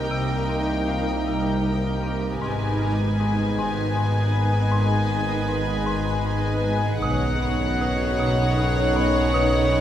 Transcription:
Already playing: cello section C2, double bass section C2, synth drone C2, french horn section D#3 A#3, harp D#4 D#5, viola section D#4, synth texture G4 A#4 D#5, violin section A#4 G5
0.11 marimba C3
0.49 marimba C4
0.88 marimba C3, harp F4 F5
1.27 marimba C3
1.65 marimba C3
2.03 marimba C4
2.40 double bass section G#1, synth drone G#1, marimba G#2, cello section G#2, french horn section D#3 B3, viola section D#4, synth texture G#4 B4 D#5, violin section B4 G#5
2.82 marimba G#3
3.19 marimba G#2, harp G#4 G#5
3.58 marimba G#2
3.96 marimba G#2
4.34 marimba G#3
4.72 marimba G#2
5.10 marimba G#3
5.49 marimba G#2
5.86 marimba G#2
6.26 marimba G#2
6.64 marimba G#3
7.02 synth drone B1, double bass section B1, marimba B2, cello section B2, french horn section D#3 C#4, viola section D#4, synth texture F#4 C#5 D#5, violin section C#5 F#5
7.42 marimba B3
7.81 marimba B2
8.19 marimba B2
8.58 marimba B2
8.95 marimba B3, harp C#6
9.34 marimba B2
9.72 marimba B3

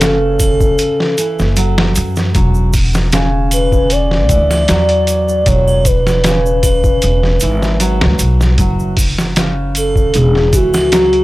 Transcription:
Already playing: upright bass F#1, soft synth lead A4
0.01 nylon-string guitar C#3, snare, closed hi-hat, shaker
0.40 kick, closed hi-hat, triangle, shaker
0.60 kick, shaker
0.78 closed hi-hat, shaker
1.00 snare
1.18 nylon-string guitar E3, closed hi-hat, shaker
1.39 upright bass F#1, snare, shaker
1.56 nylon-string guitar F#3, closed hi-hat, shaker
1.78 snare
1.95 upright bass F#2, closed hi-hat, shaker
2.16 snare, shaker
2.35 upright bass E1, nylon-string guitar F#3, kick, closed hi-hat, shaker
2.54 shaker
2.73 kick, open hi-hat, shaker
2.94 snare, shaker
3.12 nylon-string guitar C#3, snare, closed hi-hat, shaker
3.51 soft synth lead B4, closed hi-hat, triangle, shaker
3.72 kick, shaker
3.90 soft synth lead D5, closed hi-hat, shaker
4.11 snare
4.29 upright bass D2, nylon-string guitar E3, kick, closed hi-hat, shaker
4.51 snare, triangle, shaker
4.68 upright bass E2, nylon-string guitar F#3, snare, closed hi-hat, shaker
4.89 closed hi-hat
5.07 closed hi-hat, shaker
5.29 shaker
5.46 upright bass E1, nylon-string guitar F#3, soft synth lead C#5, kick, closed hi-hat, shaker
5.68 triangle, shaker
5.85 soft synth lead B4, kick, closed hi-hat, shaker
6.07 snare, shaker
6.24 nylon-string guitar C#3, snare, closed hi-hat, shaker
6.46 shaker
6.63 kick, closed hi-hat, triangle, shaker
6.84 kick, shaker
7.02 upright bass E1, closed hi-hat, shaker
7.23 snare
7.40 upright bass G#1, nylon-string guitar E3, closed hi-hat, shaker
7.62 snare, shaker
7.80 nylon-string guitar F#3, closed hi-hat, shaker
8.01 upright bass D2, snare
8.19 upright bass B1, closed hi-hat, shaker
8.41 snare, shaker
8.58 upright bass F#1, nylon-string guitar F#3, kick, closed hi-hat, shaker
8.79 shaker
8.97 kick, open hi-hat, shaker
9.18 snare, shaker
9.36 nylon-string guitar C#3, snare, closed hi-hat, shaker
9.75 soft synth lead A4, closed hi-hat, triangle, shaker
9.96 kick, shaker
10.14 upright bass E1, soft synth lead G#4, closed hi-hat, shaker
10.35 snare
10.53 upright bass C#2, nylon-string guitar E3, soft synth lead F#4, kick, closed hi-hat, shaker
10.73 snare, triangle, shaker
10.92 nylon-string guitar F#3, snare, closed hi-hat, shaker
11.13 closed hi-hat

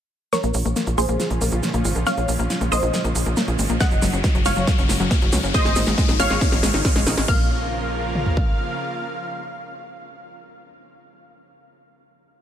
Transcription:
0.33 supersaw synth A#2 C#3 F3 C#4 F4 A#4 C#5, synth arpeggio sound A#3, synth pluck C#6, snare, closed hi-hat, riser, shaker
0.43 analog synth bass A#1, synth arpeggio sound A#3, closed hi-hat, shaker
0.54 analog synth bass A#1, synth arpeggio sound F4, open hi-hat, shaker
0.65 analog synth bass A#1, synth arpeggio sound A#3, closed hi-hat, shaker
0.76 synth arpeggio sound A#3, snare, closed hi-hat, shaker
0.87 analog synth bass A#1, synth arpeggio sound F4, closed hi-hat, shaker
0.98 analog synth bass A#1, synth arpeggio sound A#3, supersaw synth G#4 C5, synth pluck C6, open hi-hat, shaker
1.08 analog synth bass A#1, synth arpeggio sound A#3, closed hi-hat, shaker
1.20 synth arpeggio sound F4, snare, closed hi-hat, shaker
1.30 analog synth bass A#1, synth arpeggio sound A#3, closed hi-hat, shaker
1.41 analog synth bass A#1, synth arpeggio sound A#3, open hi-hat, shaker
1.52 analog synth bass A#1, synth arpeggio sound F4, closed hi-hat, shaker
1.63 synth arpeggio sound A#3, snare, closed hi-hat, shaker
1.74 analog synth bass A#1, synth arpeggio sound A#3, closed hi-hat, shaker
1.85 analog synth bass G#1, synth arpeggio sound F4, open hi-hat, shaker
1.95 analog synth bass A#1, synth arpeggio sound A#3, closed hi-hat, shaker
2.06 synth arpeggio sound A#3, supersaw synth C#5 F5, synth pluck F6, snare, closed hi-hat, shaker
2.17 analog synth bass A#1, synth arpeggio sound F4, closed hi-hat, shaker
2.28 analog synth bass A#1, synth arpeggio sound A#3, open hi-hat, shaker
2.39 analog synth bass A#1, synth arpeggio sound A#3, closed hi-hat, shaker
2.50 synth arpeggio sound F4, snare, closed hi-hat, shaker
2.61 analog synth bass A#1, synth arpeggio sound A#3, closed hi-hat, shaker
2.72 analog synth bass A#1, synth arpeggio sound A#3, supersaw synth C5 D#5, synth pluck D#6, open hi-hat, shaker
2.83 analog synth bass A#1, synth arpeggio sound F4, closed hi-hat, shaker
2.94 synth arpeggio sound A#3, snare, closed hi-hat, shaker
3.04 analog synth bass A#1, synth arpeggio sound A#3, closed hi-hat, shaker
3.15 analog synth bass A#1, synth arpeggio sound F4, open hi-hat, shaker
3.26 analog synth bass A#1, synth arpeggio sound A#3, closed hi-hat, shaker
3.36 synth arpeggio sound A#3, snare, closed hi-hat, shaker
3.48 analog synth bass A#1, synth arpeggio sound F4, closed hi-hat, shaker
3.59 analog synth bass G#1, synth arpeggio sound A#3, open hi-hat, shaker
3.69 analog synth bass A#1, synth arpeggio sound A#3, closed hi-hat, shaker
3.80 supersaw synth G#2 C#3 F#3 C#4 F#4 D#5 F#5, synth arpeggio sound C#4, synth pluck F#6, kick, snare, closed hi-hat, shaker
3.91 analog synth bass F#1, synth arpeggio sound F#3, closed hi-hat, shaker
4.02 analog synth bass F#1, synth arpeggio sound F#3, snare, open hi-hat, shaker
4.13 analog synth bass F#1, synth arpeggio sound C#4, closed hi-hat, shaker
4.24 synth arpeggio sound F#3, kick, snare, closed hi-hat, shaker
4.35 analog synth bass F#1, synth arpeggio sound F#3, closed hi-hat, shaker
4.45 analog synth bass F#1, synth arpeggio sound C#4, supersaw synth C#5 F5, synth pluck F6, snare, open hi-hat, shaker
4.56 analog synth bass F#1, synth arpeggio sound F#3, closed hi-hat, shaker
4.67 synth arpeggio sound F#3, kick, snare, closed hi-hat, shaker
4.78 analog synth bass F#1, synth arpeggio sound C#4, closed hi-hat, shaker
4.89 analog synth bass F#1, synth arpeggio sound F#3, snare, open hi-hat, shaker
5.00 analog synth bass F#1, synth arpeggio sound F#3, closed hi-hat, shaker
5.11 synth arpeggio sound C#4, kick, snare, closed hi-hat, shaker
5.22 analog synth bass F#1, synth arpeggio sound F#3, closed hi-hat, shaker
5.32 analog synth bass C#2, synth arpeggio sound F#3, snare, open hi-hat, shaker
5.43 analog synth bass F#1, synth arpeggio sound C#4, closed hi-hat, shaker
5.54 supersaw synth D#3 C#4 D#4 C5 D#5, synth arpeggio sound G#3, synth pluck D#6, kick, snare, closed hi-hat, shaker
5.65 analog synth bass G#1, synth arpeggio sound G#3, snare, closed hi-hat, shaker
5.76 analog synth bass G#1, synth arpeggio sound D#4, snare, open hi-hat, shaker
5.86 analog synth bass G#1, synth arpeggio sound G#3, snare, shaker
5.98 synth arpeggio sound G#3, kick, snare, closed hi-hat, shaker
6.08 analog synth bass G#1, synth arpeggio sound D#4, snare, closed hi-hat, shaker
6.20 analog synth bass G#1, synth arpeggio sound G#3, supersaw synth C#5 F5, synth pluck F6, snare, open hi-hat, shaker
6.30 analog synth bass G#1, synth arpeggio sound G#3, snare, shaker
6.41 synth arpeggio sound D#4, kick, snare, closed hi-hat, shaker
6.52 analog synth bass G#1, synth arpeggio sound G#3, snare, closed hi-hat, shaker
6.63 analog synth bass G#1, synth arpeggio sound G#3, snare, open hi-hat, shaker
6.74 analog synth bass G#1, synth arpeggio sound D#4, snare, closed hi-hat, shaker
6.85 synth arpeggio sound G#3, kick, snare, closed hi-hat, shaker
6.96 analog synth bass G#1, synth arpeggio sound G#3, snare, closed hi-hat, shaker
7.06 analog synth bass A#1, synth arpeggio sound D#4, snare, open hi-hat, shaker
7.17 analog synth bass G#1, synth arpeggio sound G#3, snare, closed hi-hat, shaker
7.28 analog synth bass A#1, supersaw synth C#3 F3 A#3 F4 A#4 F5, synth arpeggio sound A#3, synth pluck F6, kick, crash
8.15 mid tom
8.26 floor tom
8.37 kick

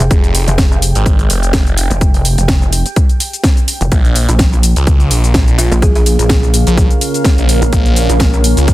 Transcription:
Already playing: ambient pad G5, downlifter
0.00 closed hi-hat, shaker
0.11 detuned saw bass F1, kick, closed hi-hat, shaker
0.24 closed hi-hat, shaker
0.35 open hi-hat, shaker
0.48 wobble bass F1, closed hi-hat, shaker
0.58 kick, snare, closed hi-hat, shaker
0.72 shaker
0.82 open hi-hat, shaker
0.95 detuned saw bass G#1, closed hi-hat, shaker
1.06 kick, closed hi-hat, shaker
1.19 closed hi-hat, shaker
1.30 detuned saw bass F1, open hi-hat, shaker
1.43 closed hi-hat, shaker
1.53 kick, snare, closed hi-hat, shaker
1.67 detuned saw bass F1, closed hi-hat, shaker
1.77 open hi-hat, shaker
1.90 wobble bass F1, closed hi-hat, shaker
2.01 kick, closed hi-hat, shaker
2.14 open hi-hat, shaker
2.25 open hi-hat, shaker
2.38 wobble bass F1, closed hi-hat, shaker
2.48 kick, snare, closed hi-hat, shaker
2.62 shaker
2.73 open hi-hat, shaker
2.86 closed hi-hat, shaker
2.96 kick, closed hi-hat, shaker
3.09 closed hi-hat, shaker
3.20 open hi-hat, shaker
3.33 closed hi-hat, shaker
3.44 kick, snare, closed hi-hat, shaker
3.57 closed hi-hat, shaker
3.68 open hi-hat, shaker
3.81 wobble bass F1, closed hi-hat, shaker
3.92 detuned saw bass A#1, ambient pad C#4, kick, closed hi-hat, shaker
4.05 closed hi-hat, shaker
4.16 open hi-hat, shaker
4.29 wobble bass A#1, closed hi-hat, shaker
4.39 kick, snare, closed hi-hat, shaker
4.53 shaker
4.62 ambient pad A#4, open hi-hat, shaker
4.76 detuned saw bass C#2, ambient pad F5, closed hi-hat, shaker
4.87 kick, closed hi-hat, shaker
5.00 closed hi-hat, shaker
5.11 detuned saw bass A#1, open hi-hat, shaker
5.24 closed hi-hat, shaker
5.34 kick, snare, closed hi-hat, shaker
5.48 detuned saw bass A#1, closed hi-hat, shaker
5.58 kalimba F4, open hi-hat, shaker
5.71 wobble bass A#1, closed hi-hat, shaker
5.82 kalimba G#4, kick, closed hi-hat, shaker
5.95 kalimba G#4, open hi-hat, shaker
6.06 open hi-hat, shaker
6.19 wobble bass A#1, closed hi-hat, shaker
6.29 kick, snare, closed hi-hat, shaker
6.43 shaker
6.54 open hi-hat, shaker
6.67 detuned saw bass A#1, closed hi-hat, shaker
6.78 kick, closed hi-hat, shaker
6.91 closed hi-hat, shaker
7.01 open hi-hat, shaker
7.14 closed hi-hat, shaker
7.25 kick, snare, closed hi-hat, shaker
7.38 detuned saw bass A#1, closed hi-hat, shaker
7.49 open hi-hat, shaker
7.62 wobble bass A#1, closed hi-hat, shaker
7.73 detuned saw bass A#1, kick, closed hi-hat, shaker
7.86 closed hi-hat, shaker
7.96 open hi-hat, shaker
8.09 wobble bass A#1, closed hi-hat, shaker
8.20 kick, snare, closed hi-hat, shaker
8.34 shaker
8.44 open hi-hat, shaker
8.57 detuned saw bass C#2, closed hi-hat, shaker
8.68 kick, closed hi-hat, shaker

